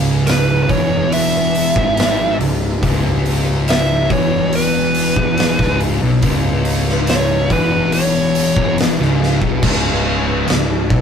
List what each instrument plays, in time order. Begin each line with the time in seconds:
Already playing: picked electric bass C#1, distorted electric guitar C#2
0.27 lead electric guitar B4, snare, open hi-hat
0.63 lead electric guitar B4
0.69 picked electric bass E1, distorted electric guitar E2, lead electric guitar C#5, kick, open hi-hat
1.12 lead electric guitar E5, open hi-hat
1.55 open hi-hat
1.76 picked electric bass G#1, distorted electric guitar G#2, kick
1.97 snare, open hi-hat
2.39 picked electric bass C#1, distorted electric guitar C#2, open hi-hat
2.83 picked electric bass C#1, distorted electric guitar C#2, kick, open hi-hat
3.26 open hi-hat
3.68 lead electric guitar E5, snare, open hi-hat
4.10 picked electric bass E1, distorted electric guitar E2, lead electric guitar C#5, kick, open hi-hat
4.53 lead electric guitar B4, open hi-hat
4.95 open hi-hat
5.16 picked electric bass E1, distorted electric guitar E2, kick
5.38 snare, open hi-hat
5.59 picked electric bass C#1, distorted electric guitar C#2, kick, snare
5.80 open hi-hat
6.02 picked electric bass B1, distorted electric guitar B2
6.22 picked electric bass C#1, distorted electric guitar C#2, kick, open hi-hat
6.65 open hi-hat
6.89 snare
7.07 lead electric guitar C#5, snare, open hi-hat
7.50 picked electric bass E1, distorted electric guitar E2, lead electric guitar B4, kick, open hi-hat
7.92 lead electric guitar C#5, open hi-hat
8.35 open hi-hat
8.56 picked electric bass E1, distorted electric guitar E2, kick
8.78 snare, open hi-hat
8.99 picked electric bass C#1, distorted electric guitar C#2, snare
9.23 snare
9.41 picked electric bass B1, distorted electric guitar B2, kick
9.62 picked electric bass C#1, distorted electric guitar C#2, kick, crash
10.48 picked electric bass C#1, distorted electric guitar C#2, snare, crash
10.90 picked electric bass B1, distorted electric guitar B2, kick